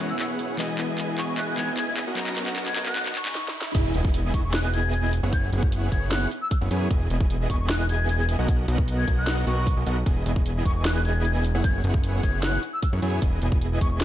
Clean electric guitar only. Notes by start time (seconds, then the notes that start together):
0.00 E3 G#3 B3 C#4 F#4
0.57 E3 G#3 B3 D#5
0.61 F#4
1.57 E3 G#3 B3 D#4 F#4
2.15 F#3 B3 C#4 D#4 A#4
3.24 F#3 B3 C#4 D#4
3.28 G#4